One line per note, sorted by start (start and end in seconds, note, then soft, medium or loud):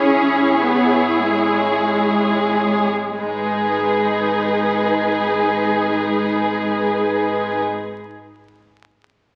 0.00 2.88 G#1 soft
0.00 0.56 C#4 medium
0.00 2.91 E4 soft
0.00 2.88 G#4 soft
0.00 2.87 C#5 soft
0.59 1.18 B3 soft
1.19 3.18 G#3 soft
3.17 7.62 G#1 soft
3.17 7.63 G#3 soft
3.17 7.62 D#4 soft
3.17 7.63 G#4 soft
3.17 7.62 B4 soft